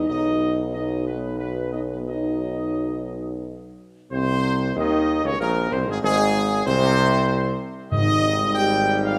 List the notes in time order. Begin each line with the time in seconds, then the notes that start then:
0.08 B1 B2 F#3 D#4 D#5
0.72 B2 F#3 D#4 D#5
1.06 B3 B4
1.39 B2 F#3 B3 B4
1.73 D#4 D#5
1.90 B3 B4
2.07 B2 F#3 D#4 D#5
4.11 C2 C3 C4 C5
4.76 D#2 D#3 D#4 D#5
5.24 C#2 C#3 C#4 C#5
5.40 A#1 A#2 A#3 A#4
5.71 C2 C3 C4 C5
5.86 G#1 G#2 G#3 G#4
6.01 G#1 G#2 G#3 G#4
6.66 C2 C3 C4 C5
7.92 G#1 G#2 D#3 G3 D#4 D#5
8.55 G4 G5
9.04 F4 F5